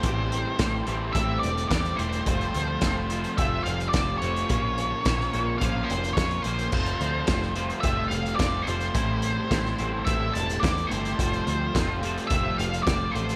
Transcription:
Already playing: G4 C5 A5
0.03 A1 A2 E3 G3 A3 C4 E4 G4 C5, kick, closed hi-hat
0.32 closed hi-hat
0.59 A1 A2 E3 G3 A3 C4 E4 G4, kick, snare, closed hi-hat
0.86 A1 A2 E3 G3 A3 C4 E4 G4, closed hi-hat
1.13 A1 A2 E3 G3 A3 C4 E4 G4 E5, kick, closed hi-hat
1.39 D5, closed hi-hat
1.43 E1
1.57 closed hi-hat
1.69 E2 A2 E3 G3 A3 C4 E4 G4 D5, kick, snare, closed hi-hat
1.85 closed hi-hat
1.96 E1 A2 E3 G3 A3 C4 E4 C5, closed hi-hat
2.00 G4
2.13 closed hi-hat
2.26 F1 F3 G3 A3 C4 F4 C5 F5, kick, closed hi-hat
2.41 closed hi-hat
2.54 D2, closed hi-hat
2.81 F1 F3 G3 A3 C4 F4 C5, kick, snare, closed hi-hat
3.10 F3 G3 A3 C4 F4 C5, closed hi-hat
3.24 closed hi-hat
3.38 F1 F3 G3 A3 C4 F4 C5 E5, kick, closed hi-hat
3.64 F1 F5, closed hi-hat
3.80 closed hi-hat
3.89 D5
3.93 F1 F3 G3 A3 C4 F4 C5, kick, snare, closed hi-hat
4.18 C#5, closed hi-hat
4.22 F1 F3 G3 A3 C4 F4 C5
4.36 closed hi-hat
4.49 A#1 A#2 F3 A#3 C#4 F4 A#4 C5 C6, kick, closed hi-hat
4.78 closed hi-hat
5.05 A#1 A#2 F3 A#3 C#4 F4 C5, kick, snare, closed hi-hat
5.20 snare
5.33 A#1 A#2 F3 A#3 C#4 F4 C5, closed hi-hat
5.58 A#1 A#2 F3 A#3 C#4 F4 C5 F5, kick, closed hi-hat
5.85 C5
5.90 F1, closed hi-hat
6.04 closed hi-hat
6.13 F2 A#2 C#5, kick, closed hi-hat
6.17 F3 A#3 C#4 F4 C5, snare
6.31 closed hi-hat
6.42 A#1 A#2 F3 A#3 C#4 C5, closed hi-hat
6.47 F4 C5
6.59 closed hi-hat
6.72 F1 F3 G3 A3 C4 F4 G4 C5 F5 A5, kick, crash
6.86 closed hi-hat
7.01 D2, closed hi-hat
7.27 F1 F3 G3 A3 C4 F4 C5, kick, snare, closed hi-hat
7.42 snare
7.55 F3 G3 A3 C4 F4 C5, closed hi-hat
7.70 closed hi-hat
7.81 F1 F3 G3 A3 C4 E5, kick, closed hi-hat
7.85 F4 C5
8.08 F1 F5, closed hi-hat
8.26 closed hi-hat
8.36 F1 F3 G3 A3 C4 F4 D5, kick, snare, closed hi-hat
8.40 C5
8.62 F3 C5
8.67 F1 G3 A3 C4 F4 C5, closed hi-hat
8.80 closed hi-hat
8.95 A1 A2 E3 G3 A3 C4 E4 G4 C5, kick, closed hi-hat
9.22 closed hi-hat
9.49 A1 A2 E3 G3 A3 C4 E4 C5, kick, snare, closed hi-hat
9.65 snare
9.78 A1 A2 E3 G3 A3 C4 E4 C5, closed hi-hat
10.05 A1 A2 E3 G3 A3 C4 E4 C5 E5, kick, closed hi-hat
10.33 E1 A5, closed hi-hat
10.50 closed hi-hat
10.60 E2 A2 E3 G3 A3 C4 E4 C5 D5, kick, closed hi-hat
10.64 snare
10.78 closed hi-hat
10.87 A2 E3 C5
10.91 G1 G3 A3 C4 E4 C5, closed hi-hat
11.05 closed hi-hat
11.18 F1 F3 G3 A3 C4 F4 C5, kick, closed hi-hat
11.22 F5
11.33 closed hi-hat
11.47 D2, closed hi-hat
11.74 F1 F3 G3 A3 C4 F4 C5, kick, snare, closed hi-hat
12.03 F3 G3 A3 C4 F4 C5, closed hi-hat
12.18 closed hi-hat
12.27 F1 C4 E5, kick, closed hi-hat
12.32 F3 G3 A3 F4 C5
12.58 F1 F5, closed hi-hat
12.74 closed hi-hat
12.83 F1 C4 D5, kick, closed hi-hat
12.87 F3 G3 A3 F4 C5, snare
13.11 A1 F3 G3 A3 C4 C5
13.15 F4 C5, closed hi-hat
13.29 closed hi-hat

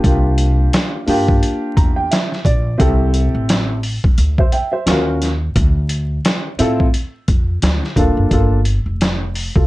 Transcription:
0.03 C2 A#3 D4 F4 G4, kick, closed hi-hat
0.38 closed hi-hat
0.73 snare, closed hi-hat
1.06 G2 A#3 D4 F4 G4, open hi-hat
1.28 kick
1.43 closed hi-hat
1.76 E2 A#5, kick, closed hi-hat
1.96 G5
2.11 E5, snare, closed hi-hat
2.32 snare
2.45 A#1 D5, kick, closed hi-hat
2.78 C2 C4 E4 G4 A4, kick, closed hi-hat
3.14 closed hi-hat
3.34 A1
3.49 snare, closed hi-hat
3.83 open hi-hat
4.04 E2, kick
4.18 D2, closed hi-hat
4.38 C5 E5, kick
4.52 E5 G5, closed hi-hat
4.72 C5 E5
4.86 D#2 C#4 F4 F#4 A#4, snare, closed hi-hat
5.22 snare, closed hi-hat
5.56 D2, kick, closed hi-hat
5.89 closed hi-hat
6.25 snare, closed hi-hat
6.59 A2 C4 E4 F4 A4, closed hi-hat
6.80 kick
6.94 closed hi-hat
7.28 F2, kick, closed hi-hat
7.62 D2, snare, closed hi-hat
7.83 snare
7.96 D#1 A#3 D4 F4 A4, kick, closed hi-hat
8.17 F#1
8.30 G1 A#3 D4 F4 A4, kick, closed hi-hat
8.65 closed hi-hat
8.86 F1
9.01 snare, closed hi-hat
9.35 open hi-hat
9.56 C2 F4 A4, kick

